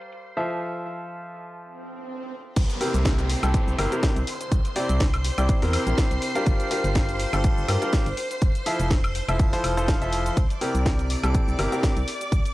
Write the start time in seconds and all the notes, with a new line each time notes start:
Already playing: G3 G4 A#4 C5 D5 F5 C6
0.02 closed hi-hat
0.12 closed hi-hat
0.37 F3 F4 A4 C5 E5
0.50 closed hi-hat
1.59 swell
2.56 C2 C5 C6, kick, closed hi-hat, crash, downlifter, shaker
2.70 closed hi-hat, shaker
2.81 C3 C4 E4 G4 A#4, open hi-hat
2.94 C2, closed hi-hat, shaker
3.05 kick, snare, closed hi-hat, shaker
3.19 closed hi-hat, shaker
3.30 open hi-hat
3.43 C2 C3 C4 E4 G4 A4, closed hi-hat, high woodblock, shaker
3.54 kick, closed hi-hat, shaker
3.68 C2, shaker
3.78 G1 C3 C4 E4 G4 A#4, open hi-hat, high woodblock
3.92 C3 C4 E4 G4 A#4, closed hi-hat, shaker
4.03 kick, snare, closed hi-hat, shaker
4.16 C2, closed hi-hat, shaker
4.27 open hi-hat
4.41 closed hi-hat, shaker
4.52 C2, kick, closed hi-hat, shaker
4.65 closed hi-hat, shaker
4.76 C3 C4 E4 G4 D5, open hi-hat
4.89 C2, closed hi-hat, shaker
5.00 kick, snare, closed hi-hat, shaker
5.14 closed hi-hat, high woodblock, shaker
5.25 open hi-hat
5.38 C2 C3 C4 E4 G4 D5, closed hi-hat, high woodblock, shaker
5.49 kick, closed hi-hat, shaker
5.62 E2 C3 C4 E4 G4 A#4, open hi-hat, shaker
5.73 open hi-hat, high woodblock
5.87 A#1 C3 C4 E4 G4 A#4, closed hi-hat, shaker
5.98 kick, snare, closed hi-hat, shaker
6.11 C2, closed hi-hat, shaker
6.22 open hi-hat
6.36 G3 D4 F4 G4 A#4, closed hi-hat, shaker
6.47 G1, kick, closed hi-hat, shaker
6.60 closed hi-hat, shaker
6.71 G3 D4 F4 G4 A#4, open hi-hat
6.84 G1, closed hi-hat, shaker
6.95 kick, snare, closed hi-hat, shaker
7.09 closed hi-hat, shaker
7.20 open hi-hat
7.33 G1 G3 D4 F4 G4 A4, closed hi-hat, high woodblock, shaker
7.44 kick, closed hi-hat, shaker
7.58 G1, shaker
7.68 G2 G3 D4 F4 G4 A#4, open hi-hat, high woodblock
7.82 G3 D4 F4 G4 A#4, closed hi-hat, shaker
7.93 kick, snare, closed hi-hat, shaker
8.06 G1, closed hi-hat, shaker
8.17 open hi-hat
8.31 closed hi-hat, shaker
8.42 F1, kick, closed hi-hat, shaker
8.55 closed hi-hat, shaker
8.66 F3 E4 F4 A4 E5, open hi-hat
8.79 F1, closed hi-hat, shaker
8.90 kick, snare, closed hi-hat, shaker
9.04 closed hi-hat, high woodblock, shaker
9.15 open hi-hat
9.28 F1 F3 E4 F4 A4 E5, closed hi-hat, high woodblock, shaker
9.39 F1, kick, closed hi-hat, shaker
9.53 F3 E4 F4 A4 C5, open hi-hat, shaker
9.64 F1, open hi-hat, high woodblock
9.77 F3 E4 F4 A4 C5, closed hi-hat, shaker
9.88 kick, snare, closed hi-hat, shaker
10.02 F1 F3 E4 F4 A4 E5, closed hi-hat, shaker
10.12 open hi-hat
10.26 closed hi-hat, shaker
10.37 C2 D5 D6, kick, closed hi-hat, shaker
10.50 closed hi-hat, shaker
10.61 C3 C4 E4 G4 A#4, open hi-hat
10.75 C2, closed hi-hat, shaker
10.86 kick, snare, closed hi-hat, shaker
10.99 closed hi-hat, shaker
11.10 open hi-hat
11.23 C2 C3 C4 E4 G4 A4, closed hi-hat, high woodblock, shaker
11.34 kick, closed hi-hat, shaker
11.48 C2, shaker
11.59 G1 C3 C4 E4 G4 A#4, open hi-hat, high woodblock
11.72 C3 C4 E4 G4 A#4, closed hi-hat, shaker
11.83 kick, snare, closed hi-hat, shaker
11.97 C2, closed hi-hat, shaker
12.08 open hi-hat
12.21 closed hi-hat, shaker
12.32 C2, kick, closed hi-hat, shaker
12.46 closed hi-hat, shaker